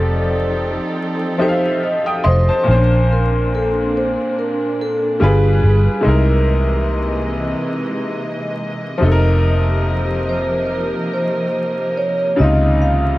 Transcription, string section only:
0.00 2.64 F3 medium
0.00 2.64 C4 medium
0.00 2.63 D#4 medium
0.00 2.64 G4 medium
0.00 2.64 A4 medium
2.67 5.18 A#3 medium
2.67 5.18 C4 medium
2.67 6.02 D4 medium
5.21 6.05 G3 medium
5.21 6.05 F4 medium
5.21 6.04 G#4 medium
5.21 6.05 B4 medium
6.05 8.98 C3 medium
6.05 8.98 E3 medium
6.05 8.98 G#3 medium
6.05 8.98 A#3 medium
6.05 12.35 D#5 medium
9.01 12.36 F3 medium
9.01 13.18 A#3 medium
9.01 12.36 G4 medium
9.01 12.36 A#4 medium
12.39 13.18 D#3 medium
12.39 13.18 G#3 medium
12.39 13.18 D#4 medium
12.39 13.18 F4 medium

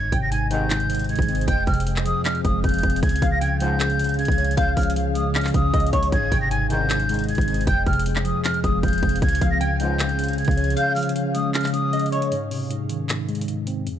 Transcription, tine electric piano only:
0.00 0.31 G#2 loud
0.12 1.09 C3 medium
0.32 0.69 G#2 medium
0.51 1.48 D#3 medium
0.70 1.09 G#2 medium
0.90 1.48 G#3 medium
1.10 1.48 G#2 medium
1.29 1.48 C4 medium
1.48 1.86 F2 loud
1.67 2.64 C3 medium
1.87 2.24 F2 medium
2.06 3.03 F3 medium
2.25 2.63 F2 medium
2.45 3.03 G#3 medium
2.64 3.03 F2 medium
2.84 3.03 C4 medium
3.03 3.40 C#3 loud
3.23 4.19 F3 medium
3.42 3.79 C#3 medium
3.61 4.58 G#3 medium
3.80 4.17 C#3 medium
3.99 4.96 C#4 medium
4.19 4.56 C#3 medium
4.38 5.35 C#5 medium
4.57 4.95 C#3 loud
4.77 5.74 F3 medium
4.96 5.34 C#3 medium
5.16 6.13 G#3 medium
5.35 5.73 C#3 medium
5.54 6.12 C#4 medium
5.74 6.12 C#3 medium
5.93 6.12 C#5 medium
6.12 6.50 G#2 loud
6.32 7.29 C3 medium
6.51 6.88 G#2 medium
6.70 7.67 D#3 medium
6.90 7.28 G#2 medium
7.09 7.67 G#3 medium
7.29 7.68 G#2 medium
7.48 7.67 C4 medium
7.68 8.05 F2 loud
7.86 8.83 C3 medium
8.06 8.43 F2 medium
8.25 9.22 F3 medium
8.45 8.82 F2 medium
8.64 9.22 G#3 medium
8.83 9.22 F2 medium
9.03 9.22 C4 medium
9.22 9.60 C#3 medium
9.42 10.38 F3 medium
9.61 9.98 C#3 medium
9.80 10.77 G#3 medium
9.99 10.37 C#3 medium
10.18 11.15 C#4 medium
10.38 10.76 C#3 medium
10.57 11.54 C#5 medium
10.77 11.14 C#3 loud
10.97 11.93 F3 medium
11.16 11.53 C#3 medium
11.35 12.32 G#3 medium
11.55 11.92 C#3 medium
11.73 12.32 C#4 medium
11.93 12.32 C#3 medium
12.12 12.32 C#5 medium
12.32 12.69 G#2 medium
12.51 13.48 C3 medium
12.71 13.08 G#2 medium
12.90 13.87 D#3 medium
13.09 13.47 G#2 medium
13.28 13.87 G#3 medium
13.48 13.87 G#2 medium
13.67 13.87 C4 medium
13.87 13.99 F2 medium

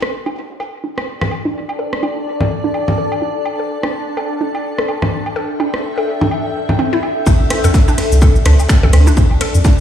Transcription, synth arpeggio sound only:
0.02 0.07 A4 medium
0.26 0.31 D4 medium
0.60 0.67 A4 medium
0.84 0.90 D4 medium
1.21 1.26 A4 medium
1.45 1.50 D4 medium
1.79 1.86 A4 medium
2.03 2.09 D4 medium
2.41 2.45 A4 medium
2.64 2.69 D4 medium
2.98 3.05 A4 medium
3.22 3.28 D4 medium
3.59 3.64 A4 medium
3.83 3.88 D4 medium
4.17 4.24 A4 medium
4.41 4.47 D4 medium
4.78 4.83 A4 medium
5.02 5.07 D4 medium
5.36 5.43 A4 medium
5.60 5.67 D4 medium
5.98 6.02 A4 medium
6.21 6.26 D4 medium
6.69 6.72 D4 medium
6.79 6.86 C4 loud
6.93 7.00 E4 loud
7.27 7.33 D4 medium
7.64 7.69 A4 medium
7.88 7.93 D4 medium
8.22 8.28 A4 medium
8.46 8.52 D4 medium
8.83 8.88 A4 medium
9.07 9.12 D4 medium
9.41 9.47 A4 medium
9.65 9.71 D4 medium

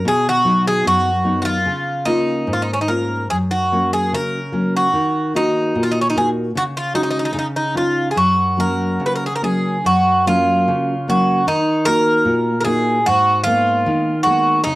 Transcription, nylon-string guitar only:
0.05 0.82 B2 medium
0.45 1.09 F#3 soft
0.45 1.09 B3 soft
0.45 1.09 D#4 medium
0.85 1.63 F#2 medium
1.24 1.56 F#3 soft
1.24 1.57 B3 soft
1.24 1.57 D#4 soft
1.66 2.44 C#3 medium
2.06 2.72 A#3 soft
2.06 2.72 C#4 soft
2.06 2.72 F4 soft
2.47 3.28 G#2 medium
2.88 3.22 A#3 soft
2.88 3.22 C#4 soft
2.88 3.22 F4 soft
3.31 4.10 F#2 medium
3.72 4.37 F#3 soft
3.72 4.37 A#3 soft
3.72 4.37 C#4 soft
4.12 4.91 C#3 medium
4.52 4.85 F#3 soft
4.52 4.85 A#3 soft
4.52 4.86 C#4 soft
4.93 5.73 D#3 medium
5.34 5.99 A#3 soft
5.34 6.00 D#4 soft
5.34 6.00 F#4 soft
5.75 6.53 A#2 medium
6.15 6.47 A#3 soft
6.15 6.48 D#4 soft
6.15 6.48 F#4 soft
6.55 7.33 C#3 medium
6.94 7.26 G#3 soft
6.94 7.27 C#4 soft
6.94 7.27 F#4 soft
7.34 8.13 C#3 medium
7.75 8.07 C#4 soft
7.75 8.08 D#4 soft
7.75 8.08 F4 soft
8.16 8.97 F#2 medium
8.57 9.25 F#3 soft
8.57 9.26 A#3 soft
8.57 9.26 C#4 soft
9.00 9.82 C#3 medium
9.42 9.76 F#3 soft
9.42 9.76 A#3 soft
9.42 9.76 C#4 soft
9.85 10.66 F#2 medium
10.26 10.92 F#3 soft
10.26 10.92 A#3 soft
10.26 10.92 C#4 soft
10.68 11.45 C#3 medium
11.08 11.40 F#3 soft
11.08 11.40 A#3 soft
11.08 11.40 C#4 soft
11.47 12.23 D#3 medium
11.86 12.50 A#3 soft
11.86 12.50 D#4 soft
11.86 12.51 F#4 soft
12.25 13.03 A#2 medium
12.65 12.97 A#3 soft
12.65 12.98 D#4 soft
12.65 12.98 F#4 soft
13.07 13.84 G#2 medium
13.46 14.09 G#3 soft
13.46 14.10 A#3 soft
13.46 14.10 B3 medium
13.86 14.64 D#3 medium
14.26 14.58 G#3 soft
14.26 14.58 A#3 soft
14.26 14.59 B3 soft
14.66 14.75 C#3 medium

